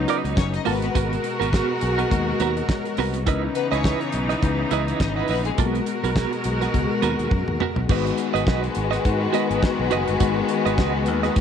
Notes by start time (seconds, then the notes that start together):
Already playing: C#3 F#3 B3 C#4 D#4 B4
0.08 F#4 B4 D#5, closed hi-hat
0.24 C#2 F#4 B4 D#5, closed hi-hat
0.37 F#1 C#4 C#5, muted clean electric guitar stroke, kick, snare, closed hi-hat
0.53 D#4 D#5, muted clean electric guitar stroke, closed hi-hat
0.65 G#1 B2 G#3 B3 F#4 A#4 B4, open hi-hat
0.82 B3 B4, muted clean electric guitar stroke, closed hi-hat
0.95 G#1 B3 F#4 A#4, kick, closed hi-hat
1.12 muted clean electric guitar stroke, closed hi-hat
1.24 muted clean electric guitar stroke, closed hi-hat
1.40 G#1 B3 F#4 A#4, closed hi-hat
1.52 B3 F#4 A#4, kick, snare, closed hi-hat
1.69 muted clean electric guitar stroke
1.81 B1 G#5, muted clean electric guitar stroke, closed hi-hat
1.98 B3 F#4 A#4 F#5, closed hi-hat
2.10 D#2 G#3 B3 F#4 A#4 D#5, kick, closed hi-hat
2.27 muted clean electric guitar stroke
2.40 D#2 B3 F#4 A#4 C#5, closed hi-hat
2.57 D#5, closed hi-hat
2.69 C#5, muted clean electric guitar stroke, kick, snare, closed hi-hat
2.85 muted clean electric guitar stroke, closed hi-hat
2.97 C2 B3 F#4 A#4 B4, open hi-hat
3.14 muted clean electric guitar stroke, closed hi-hat
3.26 C#2 C#3 E3 B3 C#4 D#4 E4 A#4 B4 D#5, kick, closed hi-hat
3.34 B4
3.43 muted clean electric guitar stroke
3.55 B3 B4, muted clean electric guitar stroke, closed hi-hat
3.72 C#2 C#4 E4 B4 C#5 D#5, closed hi-hat
3.84 E4 B4 D#5, kick, snare, closed hi-hat
4.00 muted clean electric guitar stroke, closed hi-hat
4.12 B1, muted clean electric guitar stroke, closed hi-hat
4.29 E4 B4 D#5, snare, closed hi-hat
4.42 C#2 E3 C#4 D#4 B4, muted clean electric guitar stroke, kick, closed hi-hat
4.59 muted clean electric guitar stroke
4.71 C#2 E4 B4 D#5, closed hi-hat
4.87 E4 B4 D#5, closed hi-hat
5.00 G#1 D#4 D#5, muted clean electric guitar stroke, kick, snare, closed hi-hat
5.16 B3 E4 B4 D#5
5.28 A#1 B3 E4 B4 D#5, open hi-hat
5.45 G#3 G#4, muted clean electric guitar stroke, closed hi-hat
5.58 B1 B2 G#3 A#3 B3 F#4 A#4, kick, closed hi-hat
5.65 B3
5.74 muted clean electric guitar stroke, closed hi-hat
5.86 muted clean electric guitar stroke, closed hi-hat
6.03 B1 B3 F#4 A#4, closed hi-hat
6.16 B3 F#4 A#4, kick, snare, closed hi-hat
6.32 muted clean electric guitar stroke, closed hi-hat
6.44 B1, muted clean electric guitar stroke, closed hi-hat
6.61 B3 F#4 A#4, snare, closed hi-hat
6.73 C#2 G#3 B3 F#4 A4, muted clean electric guitar stroke, kick, closed hi-hat
6.81 A#4
6.90 muted clean electric guitar stroke
7.02 D#2 B3 F#4 A#4, closed hi-hat
7.19 D#2 B3 F#4 A#4, closed hi-hat
7.31 F#2, muted clean electric guitar stroke, kick, high tom
7.47 D#2, muted clean electric guitar stroke, mid tom
7.60 B3 F#4 A#4, mid tom
7.76 B1, muted clean electric guitar stroke, floor tom
7.89 G#1 D#3 G#3 B3 D#4 F#4 B4 D#5, kick, crash
8.06 muted clean electric guitar stroke, closed hi-hat
8.18 muted clean electric guitar stroke, closed hi-hat
8.34 G#1 F#4 B4 D#5, closed hi-hat
8.46 B1 F#4 B4 D#5, kick, snare
8.63 muted clean electric guitar stroke, closed hi-hat
8.75 G#1, muted clean electric guitar stroke, closed hi-hat
8.91 F#4 B4 D#5, snare, closed hi-hat
9.04 G#2, muted clean electric guitar stroke, kick, closed hi-hat
9.20 muted clean electric guitar stroke
9.33 G#3 B3 D#4 F#4 B4 D#5, closed hi-hat
9.49 G#1 F#4 B4 D#5, closed hi-hat
9.62 muted clean electric guitar stroke, kick, snare
9.78 B1, muted clean electric guitar stroke
9.91 F#1 F#4 B4 D#5, closed hi-hat
10.07 G1, muted clean electric guitar stroke, closed hi-hat
10.20 G#1 G#3 B3 D#4 F#4 B4 D#5, kick, closed hi-hat
10.37 muted clean electric guitar stroke
10.49 muted clean electric guitar stroke, closed hi-hat
10.66 G#1 F#4 B4 D#5, closed hi-hat
10.78 C#2 F#4 B4 D#5, kick, snare
10.94 muted clean electric guitar stroke
11.06 D#2, muted clean electric guitar stroke, closed hi-hat
11.23 F#4 B4 D#5, snare, closed hi-hat
11.36 G#2, muted clean electric guitar stroke, kick, closed hi-hat